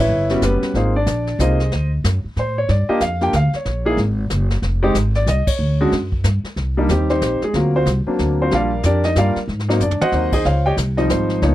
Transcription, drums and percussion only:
0.29 snare
0.42 snare, hi-hat pedal
0.63 snare
0.74 brush sweep, snare
1.06 snare, hi-hat pedal
1.27 snare
1.39 snare, hi-hat pedal
1.60 snare
1.72 brush sweep, snare
2.04 snare, hi-hat pedal
2.37 snare
2.69 brush sweep, snare
3.00 snare, hi-hat pedal
3.21 snare
3.33 snare, hi-hat pedal
3.53 snare
3.65 brush sweep, snare
3.98 snare
4.30 snare, hi-hat pedal
4.50 snare
4.62 brush sweep, snare
4.95 snare, hi-hat pedal
5.15 snare
5.27 snare, hi-hat pedal
5.47 kick, crash
5.59 brush sweep
5.92 snare
6.12 kick
6.24 snare, hi-hat pedal
6.45 snare
6.57 brush sweep, snare
6.89 snare, hi-hat pedal
7.09 snare
7.21 snare, hi-hat pedal
7.42 snare
7.54 brush sweep, snare
7.86 snare, hi-hat pedal
8.19 snare
8.51 brush sweep, snare
8.83 snare, hi-hat pedal
9.04 snare
9.16 snare, hi-hat pedal
9.36 snare
9.49 brush sweep, snare
9.59 snare
9.70 snare
9.80 floor tom, hi-hat pedal
9.91 floor tom
10.01 mid tom
10.12 snare
10.32 kick, crash
10.45 brush sweep, snare
10.77 snare, hi-hat pedal
10.97 snare
11.10 snare, hi-hat pedal
11.29 snare
11.42 brush sweep, snare

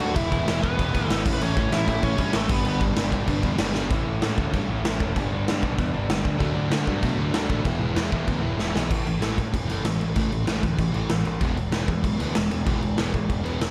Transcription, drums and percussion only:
0.00 crash
0.16 kick, crash
0.32 kick, crash
0.48 snare, crash
0.64 kick, crash
0.79 kick, crash
0.95 kick, crash
1.10 snare, crash
1.26 kick, crash
1.41 crash
1.57 kick, crash
1.72 snare, crash
1.88 kick, crash
2.03 kick, crash
2.18 kick, crash
2.33 snare, crash
2.49 kick, crash
2.65 crash
2.81 kick, crash
2.96 snare, crash
3.12 kick, crash
3.27 kick, crash
3.43 kick, crash
3.58 snare, crash
3.75 snare
3.91 kick, crash
4.22 snare, crash
4.38 kick
4.54 kick, crash
4.85 snare, crash
5.00 kick
5.16 kick, crash
5.48 snare, crash
5.63 kick
5.79 kick, crash
6.10 snare, crash
6.25 kick
6.40 kick, crash
6.71 snare, crash
6.87 kick
7.03 kick, crash
7.34 snare, crash
7.50 kick
7.65 kick, crash
7.96 snare, crash
8.12 kick
8.28 kick, crash
8.59 snare
8.76 snare
8.91 kick, crash
9.07 crash
9.22 snare, crash
9.38 kick, crash
9.54 kick, crash
9.70 crash
9.85 snare, crash
10.01 crash
10.16 kick, crash
10.32 crash
10.47 snare, crash
10.63 kick, crash
10.78 kick, crash
10.94 crash
11.09 snare, crash
11.25 crash
11.41 kick, crash
11.57 crash
11.72 snare, crash
11.88 kick, crash
12.04 kick, crash
12.20 crash
12.35 snare, crash
12.51 crash
12.66 kick, crash
12.82 crash
12.98 snare, crash
13.14 kick, crash
13.30 kick, crash
13.46 crash
13.61 snare, crash

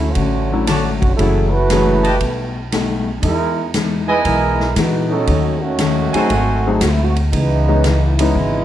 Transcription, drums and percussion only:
0.15 kick, ride
0.67 snare, hi-hat pedal, ride
1.02 kick, ride
1.19 kick, ride
1.70 snare, hi-hat pedal, ride
2.05 ride
2.21 kick, ride
2.72 snare, hi-hat pedal, ride
3.23 kick, ride
3.74 snare, hi-hat pedal, ride
4.25 kick, ride
4.60 snare
4.76 snare, hi-hat pedal, ride
5.27 kick, ride
5.79 snare, hi-hat pedal, ride
6.14 ride
6.30 kick, ride
6.81 snare, hi-hat pedal, ride
7.16 ride
7.33 kick, ride
7.84 snare, hi-hat pedal, ride
8.19 ride
8.35 kick

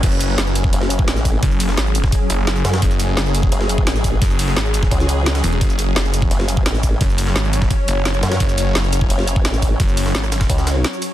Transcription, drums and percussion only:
0.03 kick, closed hi-hat, ride, crash
0.12 ride, shaker
0.21 closed hi-hat, ride, shaker
0.38 snare, closed hi-hat, ride
0.47 shaker
0.55 closed hi-hat, ride, shaker
0.64 kick
0.73 closed hi-hat, ride
0.82 snare
0.90 closed hi-hat, ride, shaker
0.99 kick
1.08 snare, closed hi-hat, ride
1.16 snare, shaker
1.25 kick, open hi-hat, ride, shaker
1.43 kick, closed hi-hat, ride
1.51 shaker
1.60 closed hi-hat, open hi-hat, shaker
1.69 snare
1.77 snare, closed hi-hat, ride
1.86 shaker
1.95 closed hi-hat, ride, shaker
2.04 kick, cross-stick, snare
2.12 kick, closed hi-hat, ride
2.30 closed hi-hat, ride, shaker
2.47 snare, closed hi-hat, ride
2.56 ride, shaker
2.65 snare, open hi-hat, ride, shaker
2.73 cross-stick, snare, ride
2.82 kick, closed hi-hat, ride
2.91 ride, shaker
3.00 closed hi-hat, ride, shaker
3.17 snare, closed hi-hat, ride
3.26 shaker
3.35 closed hi-hat, ride, shaker
3.43 kick
3.52 closed hi-hat, ride
3.61 snare
3.69 closed hi-hat, ride, shaker
3.78 kick
3.87 snare, closed hi-hat, ride
3.96 snare, shaker
4.04 kick, open hi-hat, ride, shaker
4.22 kick, closed hi-hat, ride
4.30 shaker
4.39 closed hi-hat, open hi-hat, shaker
4.48 snare
4.57 snare, closed hi-hat, ride
4.65 shaker
4.74 closed hi-hat, ride, shaker
4.83 kick, cross-stick, snare
4.91 kick, closed hi-hat, ride
5.00 snare, shaker
5.09 closed hi-hat, ride, shaker
5.26 snare, closed hi-hat, ride
5.35 snare, ride, shaker
5.44 open hi-hat, ride, shaker
5.53 ride
5.61 kick, closed hi-hat, ride
5.70 ride, shaker
5.79 closed hi-hat, ride, shaker
5.96 snare, closed hi-hat, ride
6.05 shaker
6.14 closed hi-hat, ride, shaker
6.22 kick
6.31 closed hi-hat, ride
6.40 snare
6.48 closed hi-hat, ride, shaker
6.57 kick
6.66 snare, closed hi-hat, ride
6.75 snare, shaker
6.83 kick, open hi-hat, ride, shaker
7.01 kick, closed hi-hat, ride
7.10 shaker
7.18 closed hi-hat, open hi-hat, shaker
7.27 snare
7.36 snare, closed hi-hat, ride
7.44 shaker
7.53 closed hi-hat, ride, shaker
7.62 kick, cross-stick, snare
7.71 kick, closed hi-hat, ride
7.88 closed hi-hat, ride, shaker
8.05 snare, closed hi-hat, ride
8.14 ride, shaker
8.23 snare, open hi-hat, ride, shaker
8.32 cross-stick, snare, ride
8.40 kick, closed hi-hat, ride
8.49 ride, shaker
8.58 closed hi-hat, ride, shaker
8.75 snare, closed hi-hat, ride
8.84 shaker
8.93 closed hi-hat, ride, shaker
9.01 kick
9.10 closed hi-hat, ride
9.19 snare
9.27 closed hi-hat, ride, shaker
9.36 kick
9.45 snare, closed hi-hat, ride
9.54 snare, shaker
9.62 kick, open hi-hat, ride, shaker
9.80 kick, closed hi-hat, ride
9.89 shaker
9.97 closed hi-hat, open hi-hat, shaker
10.06 snare
10.15 snare, closed hi-hat, ride
10.23 cross-stick, shaker
10.32 snare, closed hi-hat, ride, shaker
10.41 kick, cross-stick, snare, ride
10.50 kick, closed hi-hat, ride
10.58 snare, shaker
10.67 snare, closed hi-hat, ride, shaker
10.84 snare, closed hi-hat, ride
10.93 shaker
11.02 open hi-hat, ride, shaker

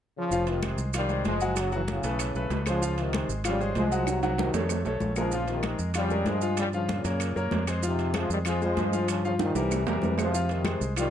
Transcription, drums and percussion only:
0.32 high conga, maracas
0.47 high conga, high timbale, maracas
0.63 high conga, high timbale, claves, maracas
0.78 maracas
0.93 high conga, high timbale, claves, maracas
1.09 high conga, maracas
1.25 high conga, high timbale, low timbale, maracas
1.41 high conga, maracas
1.56 high conga, high timbale, claves, maracas
1.72 high conga, maracas
1.88 high conga, high timbale, maracas
2.03 high conga, high timbale, maracas
2.19 high conga, high timbale, claves, maracas
2.35 high conga, maracas
2.50 high conga, high timbale, low timbale, maracas
2.66 high conga, high timbale, claves, maracas
2.82 high conga, maracas
2.98 high conga, high timbale, maracas
3.13 high conga, high timbale, claves, maracas
3.29 maracas
3.44 high conga, high timbale, claves, maracas
3.61 high conga, maracas
3.75 high conga, high timbale, low timbale, maracas
3.92 maracas
4.07 high conga, high timbale, claves, maracas
4.23 high conga, high timbale, maracas
4.38 high conga, high timbale, maracas
4.54 low timbale, maracas
4.69 high conga, low timbale, claves, maracas
4.85 high conga, low timbale, maracas
5.00 high conga, maracas
5.16 high conga, low timbale, claves, maracas
5.32 high conga, maracas
5.48 high conga, high timbale, maracas
5.63 high conga, high timbale, claves, maracas
5.79 maracas
5.94 high conga, high timbale, claves, maracas
6.10 high conga, maracas
6.26 high conga, high timbale, low timbale, maracas
6.41 high conga, maracas
6.57 high conga, high timbale, claves, maracas
6.73 high conga, maracas
6.89 high conga, high timbale, maracas
7.05 high conga, high timbale, maracas
7.20 high conga, high timbale, claves, maracas
7.36 high conga, maracas
7.51 high conga, high timbale, low timbale, maracas
7.67 high conga, high timbale, claves, maracas
7.83 high conga, maracas
7.99 high conga, high timbale, maracas
8.14 high conga, high timbale, claves, maracas
8.30 maracas
8.45 high conga, high timbale, claves, maracas
8.61 high conga, maracas
8.77 high conga, high timbale, low timbale, maracas
8.93 high conga, maracas
9.08 high conga, high timbale, claves, maracas
9.25 high conga, maracas
9.39 high conga, high timbale, maracas
9.55 high conga, high timbale, maracas
9.71 high conga, low timbale, claves, maracas
9.87 high conga, low timbale, maracas
10.02 high conga, low timbale, maracas
10.18 high conga, low timbale, claves, maracas
10.33 high conga, maracas
10.49 high conga, high timbale, maracas
10.65 high conga, high timbale, claves, maracas
10.81 maracas
10.96 high conga, high timbale, claves, maracas

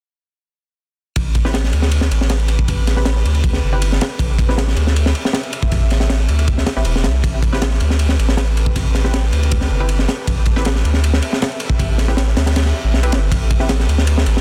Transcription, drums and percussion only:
1.16 kick, ride
1.35 kick, ride
1.45 snare
1.54 snare, ride
1.64 snare
1.73 ride
1.82 snare
1.91 ride
2.01 snare
2.11 ride
2.21 snare
2.29 snare, ride
2.40 ride
2.48 ride
2.59 kick
2.68 kick, ride
2.87 snare, ride
2.96 snare
3.05 snare, ride
3.16 snare
3.25 ride
3.35 ride
3.44 kick, ride
3.53 snare
3.82 ride
3.92 snare
4.01 snare, ride
4.19 kick, ride
4.39 kick, ride
4.49 snare
4.58 snare, ride
4.68 snare
4.76 ride
4.87 snare
4.96 ride
5.06 snare
5.15 ride
5.25 snare
5.33 snare, ride
5.43 ride
5.53 ride
5.63 kick
5.72 kick, ride
5.90 snare, ride
6.00 snare
6.10 snare, ride
6.19 snare
6.28 ride
6.39 ride
6.48 kick, ride
6.58 snare
6.66 snare, ride
6.76 snare
6.85 ride
6.96 snare
7.04 snare, ride
7.24 kick, ride
7.43 kick, ride
7.53 snare
7.62 snare, ride
7.71 snare
7.80 ride
7.90 snare
7.99 ride
8.09 snare
8.19 ride
8.28 snare
8.37 snare, ride
8.47 ride
8.57 ride
8.66 kick
8.76 kick, ride
8.95 snare, ride
9.04 snare
9.14 snare, ride
9.23 snare
9.33 ride
9.43 ride
9.52 kick, ride
9.61 snare
9.89 ride
9.99 snare
10.08 snare, ride
10.27 kick, ride
10.45 kick, ride
10.56 snare
10.65 snare, ride
10.75 snare
10.85 ride
10.94 snare
11.04 ride
11.13 snare
11.22 ride
11.33 snare
11.42 snare, ride
11.52 ride
11.60 ride
11.70 kick
11.79 kick, ride
11.98 snare, ride
12.08 snare
12.17 snare, ride
12.27 snare
12.37 snare, ride
12.46 snare, ride
12.56 snare, ride
12.66 snare
12.94 snare
13.03 ride
13.12 snare, ride
13.32 kick, ride
13.51 kick, ride
13.60 snare
13.69 snare, ride
13.79 snare
13.89 ride
13.98 snare
14.07 ride
14.18 snare
14.26 ride
14.37 snare

